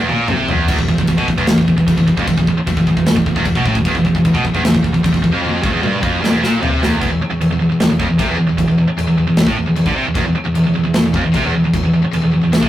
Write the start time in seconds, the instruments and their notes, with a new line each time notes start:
0.00 distorted electric guitar E2
0.09 picked electric bass A#1, distorted electric guitar A#2, high tom
0.28 picked electric bass C2, distorted electric guitar C3, mid tom
0.49 picked electric bass E1, distorted electric guitar E2, floor tom
0.68 picked electric bass E1, distorted electric guitar E2, kick, crash
0.78 picked electric bass E1, distorted electric guitar E2, kick
0.88 distorted electric guitar E2, kick
0.98 picked electric bass E1, distorted electric guitar E2, kick
1.07 picked electric bass E1, distorted electric guitar E2, kick, crash
1.18 picked electric bass B1, distorted electric guitar B2, kick
1.28 picked electric bass E1, distorted electric guitar E2, kick
1.37 picked electric bass E1, distorted electric guitar E2, kick
1.47 picked electric bass E1, distorted electric guitar E2, snare, crash
1.57 picked electric bass E1, distorted electric guitar E2, kick
1.68 picked electric bass E1, distorted electric guitar E2, kick
1.77 picked electric bass E1, distorted electric guitar E2, kick
1.88 picked electric bass E1, distorted electric guitar E2, kick, crash
1.97 picked electric bass E1, distorted electric guitar E2, kick
2.08 picked electric bass E1, distorted electric guitar E2, kick
2.17 picked electric bass F1, distorted electric guitar F2, kick
2.27 picked electric bass E1, distorted electric guitar E2, kick, crash
2.37 picked electric bass E1, distorted electric guitar E2, kick
2.47 picked electric bass E1, distorted electric guitar E2, kick
2.55 muted picked electric bass stroke, muted distorted electric guitar stroke
2.67 picked electric bass E1, distorted electric guitar E2, kick, crash
2.77 picked electric bass E1, distorted electric guitar E2, kick
2.87 picked electric bass E1, distorted electric guitar E2, kick
2.97 picked electric bass E1, distorted electric guitar E2, kick
3.06 picked electric bass E1, distorted electric guitar E2, snare, crash
3.17 picked electric bass E1, distorted electric guitar E2, kick
3.26 picked electric bass E1, distorted electric guitar E2, kick
3.36 picked electric bass E1, distorted electric guitar E2, kick
3.45 picked electric bass E1, distorted electric guitar E2, kick, crash
3.55 picked electric bass B1, distorted electric guitar B2, kick
3.65 picked electric bass A1, distorted electric guitar A2, kick
3.75 picked electric bass E1, distorted electric guitar E2, kick
3.85 picked electric bass E1, distorted electric guitar E2, kick, crash
3.94 picked electric bass E1, distorted electric guitar E2, kick
4.05 picked electric bass E1, distorted electric guitar E2, kick
4.14 picked electric bass E1, distorted electric guitar E2, kick
4.25 picked electric bass E1, distorted electric guitar E2, kick, crash
4.34 picked electric bass B1, distorted electric guitar B2, kick
4.44 picked electric bass E1, distorted electric guitar E2, kick
4.53 picked electric bass E1, distorted electric guitar E2, kick
4.63 picked electric bass E1, distorted electric guitar E2, snare, crash
4.74 picked electric bass E1, distorted electric guitar E2, kick
4.83 picked electric bass E1, distorted electric guitar E2, kick
4.94 picked electric bass E1, distorted electric guitar E2, kick
5.03 picked electric bass E1, distorted electric guitar E2, kick, crash
5.13 picked electric bass E1, distorted electric guitar E2, kick
5.22 picked electric bass E1, distorted electric guitar E2, kick
5.32 picked electric bass F1, distorted electric guitar F2
5.42 picked electric bass F1, distorted electric guitar F2, high tom
5.62 picked electric bass G1, distorted electric guitar G2, kick
5.71 picked electric bass E1, distorted electric guitar E2
5.81 picked electric bass G1, distorted electric guitar G2, mid tom
6.01 picked electric bass F1, distorted electric guitar F2, kick
6.22 picked electric bass G1, distorted electric guitar G2, snare
6.31 picked electric bass E1, distorted electric guitar E2
6.41 picked electric bass A#1, distorted electric guitar A#2, snare
6.62 picked electric bass C2, distorted electric guitar C3, floor tom
6.81 picked electric bass E1, distorted electric guitar E2, snare
7.01 picked electric bass E1, distorted electric guitar E2, kick, china
7.12 picked electric bass E1, distorted electric guitar E2
7.21 muted picked electric bass stroke, muted distorted electric guitar stroke
7.30 picked electric bass E1, distorted electric guitar E2
7.40 picked electric bass E1, distorted electric guitar E2, china
7.49 picked electric bass E1, distorted electric guitar E2
7.59 picked electric bass E1, distorted electric guitar E2
7.69 picked electric bass E1, distorted electric guitar E2
7.79 picked electric bass E1, distorted electric guitar E2, snare, china
7.88 picked electric bass E1, distorted electric guitar E2
8.00 picked electric bass F1, distorted electric guitar F2, kick
8.09 picked electric bass E1, distorted electric guitar E2
8.19 picked electric bass C2, distorted electric guitar C3, kick, china
8.28 picked electric bass E1, distorted electric guitar E2
8.38 picked electric bass E1, distorted electric guitar E2
8.48 picked electric bass E1, distorted electric guitar E2
8.58 picked electric bass E1, distorted electric guitar E2, kick, china
8.67 picked electric bass E1, distorted electric guitar E2
8.77 picked electric bass E1, distorted electric guitar E2
8.87 muted distorted electric guitar stroke
8.96 picked electric bass E1, distorted electric guitar E2, china
9.06 picked electric bass E1, distorted electric guitar E2
9.16 picked electric bass E1, distorted electric guitar E2
9.26 picked electric bass E1, distorted electric guitar E2
9.36 picked electric bass E1, distorted electric guitar E2, snare, china
9.46 picked electric bass A1, distorted electric guitar A2, kick
9.56 picked electric bass E1, distorted electric guitar E2
9.66 picked electric bass E1, distorted electric guitar E2
9.76 picked electric bass E1, distorted electric guitar E2, china
9.86 picked electric bass D2, distorted electric guitar D3, kick
9.96 picked electric bass C2, distorted electric guitar C3
10.05 picked electric bass E1, distorted electric guitar E2
10.14 picked electric bass E1, distorted electric guitar E2, kick, china
10.25 picked electric bass E1, distorted electric guitar E2
10.35 muted distorted electric guitar stroke, muted picked electric bass stroke
10.44 picked electric bass E1, distorted electric guitar E2
10.55 picked electric bass E1, distorted electric guitar E2, china
10.64 picked electric bass E1, distorted electric guitar E2
10.74 picked electric bass E1, distorted electric guitar E2
10.83 picked electric bass E1, distorted electric guitar E2
10.94 picked electric bass E1, distorted electric guitar E2, snare, china
11.04 picked electric bass E1, distorted electric guitar E2
11.13 picked electric bass F1, distorted electric guitar F2, kick
11.23 picked electric bass E1, distorted electric guitar E2
11.32 picked electric bass C2, distorted electric guitar C3, kick, china
11.43 picked electric bass E1, distorted electric guitar E2
11.53 picked electric bass E1, distorted electric guitar E2
11.64 picked electric bass E1, distorted electric guitar E2
11.73 picked electric bass E1, distorted electric guitar E2, kick, china
11.83 picked electric bass E1, distorted electric guitar E2
11.94 picked electric bass E1, distorted electric guitar E2
12.02 muted distorted electric guitar stroke, muted picked electric bass stroke
12.12 picked electric bass E1, distorted electric guitar E2, china
12.22 picked electric bass E1, distorted electric guitar E2
12.32 picked electric bass E1, distorted electric guitar E2
12.41 picked electric bass E1, distorted electric guitar E2
12.52 picked electric bass E1, distorted electric guitar E2, snare, china
12.61 picked electric bass A1, distorted electric guitar A2, kick